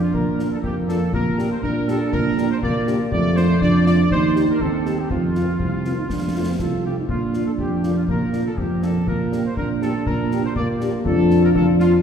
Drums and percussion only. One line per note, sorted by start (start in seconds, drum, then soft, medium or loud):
0.14 concert bass drum medium
0.39 snare soft
0.64 concert bass drum medium
0.89 snare soft
1.13 concert bass drum medium
1.39 snare soft
1.63 concert bass drum medium
1.88 snare soft
2.13 concert bass drum medium
2.38 snare soft
2.63 concert bass drum medium
2.87 snare soft
3.12 concert bass drum medium
3.36 snare soft
3.61 concert bass drum medium
3.86 snare soft
4.11 concert bass drum medium
4.36 snare soft
4.61 concert bass drum medium
4.86 snare soft
5.10 concert bass drum medium
5.35 snare soft
5.60 concert bass drum medium
5.85 snare soft
6.10 concert bass drum medium
6.10 snare soft
6.59 concert bass drum medium
6.59 snare soft
7.09 concert bass drum medium
7.33 snare soft
7.58 concert bass drum medium
7.83 snare soft
8.08 concert bass drum medium
8.33 snare soft
8.58 concert bass drum medium
8.82 snare soft
9.07 concert bass drum medium
9.32 snare soft
9.57 concert bass drum medium
9.82 snare soft
10.06 concert bass drum medium
10.31 snare soft
10.56 concert bass drum medium
10.81 snare soft
11.05 concert bass drum medium
11.30 snare soft
11.55 concert bass drum medium
11.80 snare soft